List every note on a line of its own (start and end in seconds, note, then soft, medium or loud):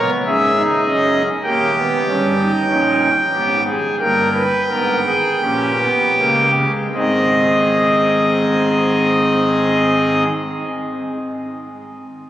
0.00 0.22 B3 loud
0.00 0.11 A#4 medium
0.00 0.11 C#5 medium
0.26 0.62 G#1 medium
0.26 0.62 G#2 medium
0.26 0.51 C#4 loud
0.26 1.28 G#4 medium
0.26 0.63 E5 medium
0.55 0.81 D#4 medium
0.85 1.22 F#1 medium
0.85 1.23 F#2 medium
0.85 1.22 C#4 medium
0.85 1.23 D#5 medium
1.44 1.82 D#1 loud
1.44 1.82 D#2 medium
1.44 1.70 A#3 loud
1.44 2.52 G4 loud
1.44 3.64 G5 loud
1.76 2.02 B3 medium
2.07 2.46 G1 medium
2.07 2.46 G2 loud
2.07 2.34 C#4 loud
2.38 2.65 D#4 medium
2.69 3.09 A#1 loud
2.69 3.09 A#2 loud
2.69 3.09 C#4 loud
2.69 3.09 D#4 medium
3.32 3.74 G#1 loud
3.32 3.74 G#2 loud
3.32 3.74 B3 loud
3.32 3.61 G4 medium
3.67 3.96 G#4 medium
3.99 4.42 G1 medium
3.99 4.42 G2 medium
3.99 4.42 A#3 medium
3.99 4.29 A#4 medium
3.99 6.51 G5 medium
4.34 4.64 B4 loud
4.69 5.14 G#1 medium
4.69 5.13 G#2 medium
4.69 5.13 B3 medium
4.69 5.00 A#4 medium
5.05 5.36 G#4 medium
5.41 5.87 A#1 medium
5.41 5.87 A#2 medium
5.41 5.72 C#4 medium
5.41 6.72 G4 medium
5.79 6.11 B3 medium
6.17 6.65 C#2 medium
6.17 6.65 C#3 medium
6.17 6.49 A#3 medium
6.55 6.88 G#3 medium
6.94 10.24 G#1 medium
6.94 10.23 G#2 medium
6.94 10.27 D#3 medium
6.94 10.27 G#3 medium
6.94 10.23 C4 medium
6.94 10.24 G#4 medium
6.94 10.23 D#5 medium